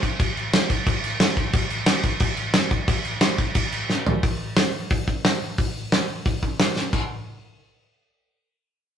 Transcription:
0.03 kick, crash
0.20 kick, crash
0.37 crash
0.54 snare, crash
0.70 kick, crash
0.87 kick, crash
1.04 crash
1.20 snare, crash
1.37 kick, crash
1.53 kick, crash
1.70 crash
1.86 snare, crash
2.03 kick, crash
2.20 kick, crash
2.37 crash
2.54 snare, crash
2.71 kick, crash
2.88 kick, crash
3.05 crash
3.21 snare, crash
3.38 kick, crash
3.55 kick, crash
3.72 crash
3.90 snare
4.06 floor tom
4.23 kick, open hi-hat
4.57 snare, open hi-hat
4.90 kick, open hi-hat
5.08 kick
5.25 snare, open hi-hat
5.58 kick, open hi-hat
5.92 snare, open hi-hat
6.25 kick, open hi-hat
6.43 kick
6.60 snare, open hi-hat
6.76 snare
6.93 kick, crash

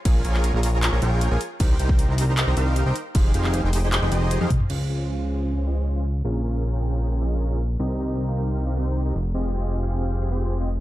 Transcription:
0.05 A#1 F4 G#4 A#4 C#5 G#5, kick, closed hi-hat, crash
0.25 A#1 F4 G#4 A#4 C#5 G#5, closed hi-hat
0.34 clap
0.44 closed hi-hat
0.54 A#1 F4 G#4 A#4 C#5 A#5
0.63 open hi-hat
0.83 clap, closed hi-hat
0.92 A#1 F4 G#4 A#4 C#5 A#5
1.02 A#1 F4 G#4 A#4 C#5 G5, closed hi-hat
1.21 closed hi-hat
1.31 A#1 F4 G#4 A#4 C#5 G#5
1.41 closed hi-hat
1.60 C2 D#4 G4 A#4 C5 G5, kick, closed hi-hat, crash
1.79 C2 D#4 G4 A#4 C5 G5, closed hi-hat
1.89 kick
1.99 closed hi-hat
2.09 C2 D#4 G4 A#4 C5 A#5
2.18 open hi-hat
2.37 clap, closed hi-hat
2.47 C2 D#4 G4 A#4 C5 A#5
2.57 C2 D#4 G4 A#4 C5 F5, closed hi-hat
2.76 closed hi-hat
2.86 C2 D#4 G4 A#4 C5 G5
2.96 closed hi-hat
3.15 F1 D#4 G4 G#4 C5 F5, kick, closed hi-hat, crash
3.34 F1 D#4 G4 G#4 C5 F5, closed hi-hat
3.44 clap
3.54 closed hi-hat
3.63 F1 D#4 G4 G#4 C5 G5
3.73 open hi-hat
3.92 clap, closed hi-hat
4.02 F1 D#4 G4 G#4 C5 G5
4.12 F1 D#4 G4 G#4 C5 D#5, closed hi-hat
4.31 closed hi-hat
4.41 F2 D#4 G4 G#4 C5 F5, high tom
4.50 kick, closed hi-hat, mid tom
4.60 mid tom
4.70 C#2 C#4 F4 G#4 C5 F5, crash
4.89 C#4 F4 G#4 C5 F5
5.18 C#4 F4 G#4 C5 G#5
5.57 C#4 F4 G#4 C5 G#5
5.67 C#4 F4 G#4 C5 D#5
5.96 C#4 F4 G#4 C5 F5
6.25 A#1 C#4 F4 G#4 A#4 F5
6.44 C#4 F4 G#4 A#4 F5
6.73 C#4 F4 G#4 A#4 G5
7.12 C#4 F4 G#4 A#4 G5
7.21 C#4 F4 G#4 A#4 D#5
7.50 C#4 F4 G#4 A#4 F5
7.79 C2 C4 D#4 G4 A#4 D#5
7.99 C4 D#4 G4 A#4 D#5
8.28 C4 D#4 G4 A#4 F5
8.67 C4 D#4 G4 A#4 F5
8.76 C4 D#4 G4 A#4 C5
9.05 C4 D#4 G4 A#4 D#5
9.15 F1
9.34 C4 F4 G4 G#4 D#5
9.54 C4 F4 G4 G#4 D#5
9.83 C4 F4 G4 G#4 F5
10.21 C4 F4 G4 G#4 F5
10.31 C4 F4 G4 G#4 C5
10.60 C4 F4 G4 G#4 D#5

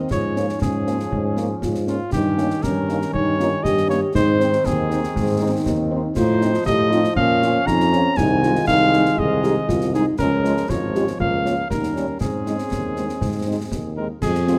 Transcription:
Already playing: C4
0.11 G#2 F3 C#4 F4 C#5, concert bass drum, snare
0.36 A#3 C#4 D#4, snare
0.49 snare
0.61 G#2 C#4 G#4, concert bass drum, snare
0.86 A#3 C#4, snare
1.00 snare
1.12 G#2, concert bass drum
1.37 A#3 C#4, snare
1.62 G#2 F4, concert bass drum, snare
1.75 snare
1.87 A#3 C#4 F4, snare
2.12 G2 D#3 C#4 D#4 G4, concert bass drum, snare, crash
2.38 A#3 C#4 D#4, snare
2.50 snare
2.63 G2 C#4 A#4, concert bass drum, snare
2.88 A#3 C#4 D#4, snare
3.02 snare
3.13 G2 D#4 C#5, concert bass drum
3.38 A#3 C#4 D#4 F4, snare
3.64 G2 G4 D#5, concert bass drum, snare
3.77 snare
3.88 A#3 C#4 D#4 C#5, snare
4.14 G#2 D#3 C4 D#4 C5, concert bass drum, snare
4.39 C4 D#4, snare
4.53 snare
4.65 D#2 G#4, concert bass drum, snare
4.90 C4 D#4, snare
5.03 snare
5.15 G#2 D#4, concert bass drum, snare
5.41 C4 D#4
5.65 D#2, concert bass drum, snare
5.91 C4 D#4
6.16 A2 F3 D#4 F4 C5, concert bass drum, snare, crash
6.41 C4 D#4 F4, snare
6.54 snare
6.66 A2 G4 D#5, concert bass drum, snare
6.91 C4 D#4 F4, snare
7.04 snare
7.16 A#2 C#4 F5, concert bass drum
7.42 C#4 F4, snare
7.66 F2 D#4 A#5, concert bass drum, snare
7.80 snare
7.92 C#4 F4, snare
8.17 C2 D#3 G#3 D#4 G#5, concert bass drum, snare
8.43 G#3 D#4 F4, snare
8.55 snare
8.67 C2 D#4 F5, concert bass drum, snare
8.93 G#3 D#4, snare
9.05 snare
9.18 C2 G#4 D#5, concert bass drum
9.43 G#3 D#4 G4, snare
9.68 C2 F4, concert bass drum, snare
9.81 snare
9.94 G#3 D#4 G#4, snare
10.18 C#2 F3 G#3 C#4 A#4, concert bass drum, snare, crash
10.44 G#3 C#4 F4, snare
10.57 snare
10.69 G#1 F4 C#5, concert bass drum, snare
10.94 G#3 C#4 F4 G4, snare
11.07 snare
11.19 C#2 A#3 F4 F5, concert bass drum
11.45 A#3 C#4 F4, snare
11.70 D#2 G3 C#4 D#4 A#4, concert bass drum, snare
11.83 snare
11.95 G3 C#4 D#4, snare
12.21 G#2 G#3 C4 G#4, concert bass drum, snare
12.46 G#3 C4 D#4, snare
12.59 snare
12.71 D#2, concert bass drum, snare
12.96 G#3 C4 D#4, snare
13.09 snare
13.21 G#2 C4, concert bass drum, snare
13.47 G#3 C4 D#4
13.72 D#2, concert bass drum, snare
13.97 G#3 C4 D#4 A#4
14.22 F2 F3 G#3 C4 G#4, concert bass drum, snare, crash
14.35 snare
14.47 G#3 C4 F4, snare

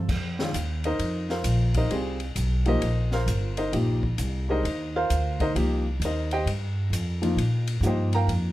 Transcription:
0.08 F2, kick, crash
0.39 D#3 G#3 D4 F4, snare
0.53 D#2, hi-hat pedal, ride
0.84 D#4 A#4 C5 D#5, ride
0.99 F2, ride
1.29 F4 A#4 C5 F5, snare
1.44 A#1, hi-hat pedal, ride
1.74 D#4 A#4 C5 D#5, kick, ride
1.90 C2 G3 C4 F4 G#4, ride
2.20 ride
2.36 B1, hi-hat pedal, ride
2.65 F3 A#3 D#4 G4 A#4 C5 D#5, ride
2.82 A#1, ride
3.11 F4 A#4 C5 F5, snare
3.26 G1, hi-hat pedal, ride
3.57 D#4 A#4 C5 D#5, ride
3.73 A#1 F3 A#3 D#4 G4, ride
4.03 kick
4.18 C2, hi-hat pedal, ride
4.49 G#3 D4 D#4 G4 A#4 C5 D#5
4.63 D#2, ride
4.96 F4 A#4 C5 F5
5.10 D2, hi-hat pedal, ride
5.40 D#4 A#4 C5 D#5, kick, ride
5.55 C2 F3 A#3 D#4 G4, ride
6.00 D#2, hi-hat pedal, ride
6.05 D#4 A#4 C5 D#5
6.31 G4 C5 D#5 G5, ride
6.46 G2, ride
6.90 F2, hi-hat pedal, ride
7.22 F3 A#3 D#4 F4, ride
7.36 A#2, ride
7.67 ride
7.81 G2 F3 A#3 D#4 G4, hi-hat pedal
7.86 G4 C5 D#5 G5
8.13 A#4 F5 G5 A#5, ride
8.27 F2, ride

